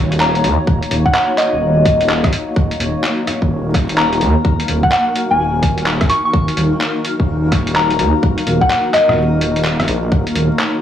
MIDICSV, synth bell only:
0, 0, Header, 1, 2, 480
1, 0, Start_track
1, 0, Key_signature, -6, "minor"
1, 0, Tempo, 472441
1, 682, Time_signature, 4, 2, 24, 8
1, 10990, End_track
2, 0, Start_track
2, 0, Title_t, "Synth bell"
2, 0, Program_c, 0, 98
2, 207, Note_on_c, 0, 82, 90
2, 459, Note_off_c, 0, 82, 0
2, 1072, Note_on_c, 0, 78, 83
2, 1129, Note_off_c, 0, 78, 0
2, 1162, Note_on_c, 0, 78, 78
2, 1259, Note_off_c, 0, 78, 0
2, 1401, Note_on_c, 0, 75, 92
2, 2086, Note_off_c, 0, 75, 0
2, 4037, Note_on_c, 0, 82, 93
2, 4294, Note_off_c, 0, 82, 0
2, 4910, Note_on_c, 0, 78, 88
2, 4968, Note_off_c, 0, 78, 0
2, 4998, Note_on_c, 0, 78, 80
2, 5097, Note_off_c, 0, 78, 0
2, 5391, Note_on_c, 0, 80, 89
2, 5641, Note_off_c, 0, 80, 0
2, 6194, Note_on_c, 0, 85, 88
2, 6295, Note_off_c, 0, 85, 0
2, 6355, Note_on_c, 0, 85, 78
2, 6410, Note_off_c, 0, 85, 0
2, 7883, Note_on_c, 0, 82, 96
2, 8137, Note_off_c, 0, 82, 0
2, 8750, Note_on_c, 0, 78, 89
2, 8808, Note_off_c, 0, 78, 0
2, 8839, Note_on_c, 0, 78, 81
2, 8937, Note_off_c, 0, 78, 0
2, 9080, Note_on_c, 0, 75, 92
2, 9765, Note_off_c, 0, 75, 0
2, 10990, End_track
0, 0, End_of_file